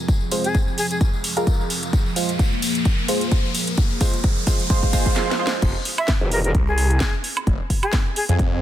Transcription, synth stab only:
0.32 G#3 F4 C5
1.37 G#3 F4 A#4
2.16 G#3 F4 C5
3.09 G#3 F4 C5
4.01 G#3 F4 C5
4.47 G#3 F4 C5
4.70 G#3 F4 C5
4.93 G#3 F4 C5
5.16 G#3 F4 C5
5.39 G#3 F4 C5

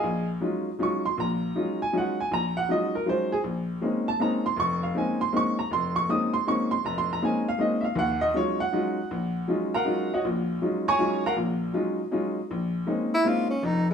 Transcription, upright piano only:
Already playing: G#4 D#5 F5 G#5
0.04 A#1
0.41 F#3 G#3 C#4 D#4 F4
0.78 F#3 G#3 C#4 D#4 F4
0.83 C#6
1.06 C6
1.17 A#1 A#2 A#5
1.55 F#3 G#3 C#4 D#4 F4
1.82 G#5
1.92 F#3 G#3 C#4 D#4 F4
1.97 F#5
2.20 G#5
2.31 A#1 A#5
2.57 F#5
2.69 F#3 G#3 C#4 D#4 F4 D#5
2.95 A#4
3.06 F#3 G#3 C#4 D#4 F4 C5
3.32 G#4
3.44 A#1
3.81 G#3 A#3 C4 C#4 D#4
4.08 A5
4.20 G#3 A#3 C4 C#4 D#4 A#5
4.46 C6
4.56 F1 C#6
4.83 F5
4.95 G#3 A#3 C4 C#4 D#4 G#5
5.21 C6
5.32 G#3 A#3 C4 C#4 D#4
5.37 C#6
5.59 A#5
5.71 F1 C6
5.96 C#6
6.09 G#3 A#3 C4 C#4 D#4 D#6
6.34 C6
6.47 G#3 A#3 C4 C#4 D#4 C#6
6.71 C6
6.85 F1 A#5
6.98 C6
7.13 A#5
7.22 G#3 A#3 C4 C#4 D#4 G#5
7.48 F5
7.58 G#3 A#3 C4 C#4 D#4 D#5
7.81 E5 F5
7.95 D#2 F#5
8.21 D#5
8.34 F#3 G#3 C#4 D#4 F4 C#5
8.60 F#5
8.72 F#3 G#3 C#4 D#4 F4
9.11 A#1
9.48 F#3 G#3 C#4 D#4 F4
9.74 A#4 F5 F#5 A#5
9.85 F#3 G#3 C#4 D#4 F4
10.14 F#4 C#5 D#5 F#5
10.25 A#1 A#2
10.62 F#3 G#3 C#4 D#4 F4
10.88 C#5 G#5 A#5 C#6
10.98 F#3 G#3 C#4 D#4 F4
11.26 A#4 F5 F#5 A#5
11.36 A#1 A#2
11.73 F#3 G#3 C#4 D#4 F4
12.11 F#3 G#3 C#4 D#4 F4
12.51 A#1
12.87 G#3 A#3 C4 C#4 D#4
13.25 G#3 A#3 C4 C#4 D#4
13.63 F1 F2

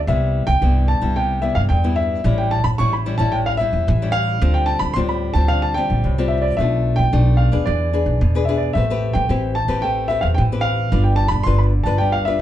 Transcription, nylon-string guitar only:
0.08 C3 G3 B3 E4
0.62 G2 G3 B3 E4
1.02 G3 B3 E4
1.17 C3
1.42 G3 B3 E4
1.70 G2
1.84 G3 B3 E4
2.25 A2 G3 C#4 E4
2.79 E3 G3 C#4 E4
3.06 G3 C#4 E4
3.18 G3 C#4 E4
3.33 A2
3.59 G3 C#4 E4
3.87 E3
4.02 G3 C#4 E4
4.41 D3 G3 C4 F4
4.96 A2 G3 C4 F4
5.35 G3 C4 F4
5.51 D3
5.77 G3 C4 F4
6.05 A2
6.18 G3 C4 F4
6.60 B2 A3 D4 F4
7.12 B2 A3 D4 F4
7.52 D4 G#4 B4
7.67 E3
7.93 D4 G#4 B4
8.21 B2
8.35 D4 G#4 B4
8.48 D4 G#4 B4
8.76 A3 C4 G4 B4
8.90 C4 G4 B4
9.29 E3 C4 G4 B4
9.68 C4 G4 B4
9.83 A3
10.10 C4 G4 B4
10.38 E3
10.52 C4 G4 B4
10.92 G3 D4 F4 B4
11.46 D3 D4 F4 B4
11.86 D4 F4 B4
12.01 G3
12.27 D4 F4 B4

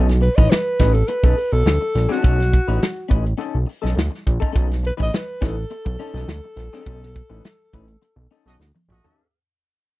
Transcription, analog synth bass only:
Already playing: B1
0.38 A1
0.80 A1
1.23 B1
1.53 B1
1.66 D2
1.95 A#1
2.24 B1
2.68 A1
3.11 A1
3.55 B1
3.84 B1
3.97 D2
4.27 A#1
4.55 B1
5.00 A1
5.42 A1
5.86 B1
6.14 B1
6.28 D2
6.56 A#1
6.86 B1
7.30 A1
7.74 A1
8.16 B1
8.46 B1
8.59 D2
8.88 A#1

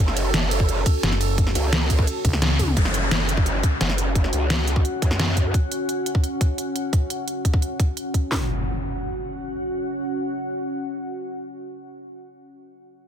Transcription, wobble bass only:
0.00 F#1
0.34 F#1
1.55 C#2
2.77 F#1
3.11 F#1
3.81 F#1
4.33 C#2
5.02 F#2

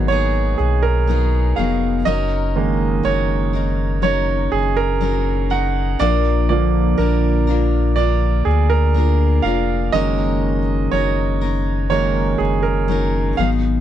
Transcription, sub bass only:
Already playing: G#1
0.60 B1
1.58 F1
2.07 F#1
3.05 F#1
4.53 F#1
6.00 A#1
6.99 A#1
8.46 D2
9.44 F1
9.94 F#1
10.93 F#1
12.40 F#1
13.39 G#1

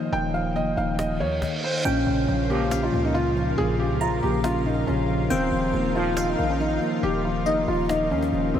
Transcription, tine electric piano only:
Already playing: D#3 F3 A#3 D#4 D#5
0.12 D#3
0.34 F3
0.56 A#3
0.77 D#4
0.99 D#5
1.20 D#3
1.86 A#2
2.07 C#3
2.28 F3
2.50 A#3
2.72 C#4
2.93 A#2
3.15 C#3
3.36 F3
3.58 A#2
3.79 C#3
4.01 F3
4.22 A#3
4.45 C#4
4.65 A#2
4.87 C#3
5.09 F3
5.31 D#3
5.52 F3
5.74 A#3
5.95 D#4
6.16 D#5
6.39 D#3
6.60 F3
6.81 A#3
7.03 D#3
7.25 F3
7.46 A#3
7.68 D#4
7.90 D#5
8.11 D#3
8.33 F3
8.54 A#3

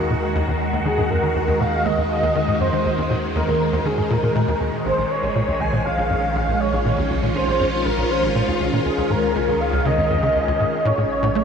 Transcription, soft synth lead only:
Already playing: A#4
0.85 G#4
1.10 A#4
1.60 F5
1.85 D#5
2.60 C5
3.35 A#4
3.85 G#4
4.10 A#4
4.85 C5
5.10 C#5
5.60 G#5
5.85 F5
6.60 C#5
7.35 C5
7.85 A#4
8.10 C5
8.85 G#4
9.11 A#4
9.60 F5
9.85 D#5
10.86 C#5

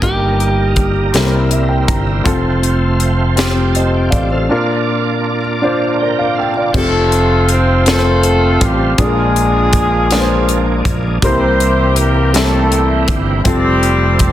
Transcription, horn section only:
6.75 A3 C4 F4 A4
7.52 C4 C5
7.87 A3 C4 F4 A4
8.63 G3 G4
8.99 G#3 D4 F4 G#4
11.24 C4 E4 G4 C5
12.00 A#3 A#4
12.35 A3 E4 A4
13.44 G3 C4 G4

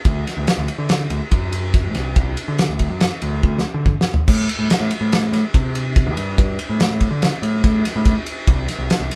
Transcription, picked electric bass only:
0.05 D2
0.37 D2
0.58 D2
0.78 D3
1.10 D2
1.31 F#2
1.84 A1
1.94 C2
2.16 C2
2.48 D3
2.69 D2
2.90 F#2
3.22 D2
3.43 D2
3.74 D3
4.28 A2
4.59 A2
4.80 A2
5.01 A2
5.32 A2
5.54 C3
6.07 E2
6.17 G2
6.38 G2
6.69 A2
6.91 A2
7.11 D3
7.42 A2
7.64 A2
7.96 A2
8.47 C2
8.78 C2
9.00 C2

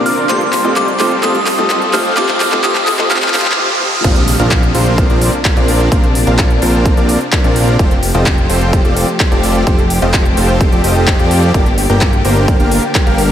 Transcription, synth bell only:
0.06 F6
0.29 C6
0.76 D6
1.23 D#6
1.93 F6
2.17 D6
2.64 D#6
3.11 F6

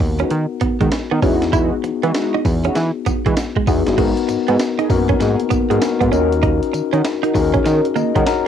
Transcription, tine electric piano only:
Already playing: B3 D#4 F#4 A#4 F#5
1.22 B3 D#4 F#4 G#4
3.67 B3 D#4 F#4 G#4
3.98 B3 D#4 F#4 A#4
4.89 A#3 D#4 F#4 A#4
4.96 B3
5.70 B3 D#4 F#4 A#4
6.12 C#4 D#4 F4 A#4
6.19 F#4
7.34 C#4 D#4 F#4 G#4
7.42 A#4
7.96 D#5
8.16 A#4 C#5 F#5
8.27 F#4 A#4 A#5

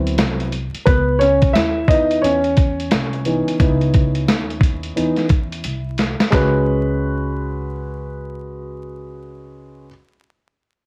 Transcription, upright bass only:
Already playing: D2
0.19 C2
0.74 muted upright bass stroke
0.87 C#2
1.55 D#2
2.24 E2
2.92 C2
3.48 muted upright bass stroke
3.60 C#2
4.29 D#2
4.97 E2
5.65 C2
6.20 muted upright bass stroke
6.33 C#2

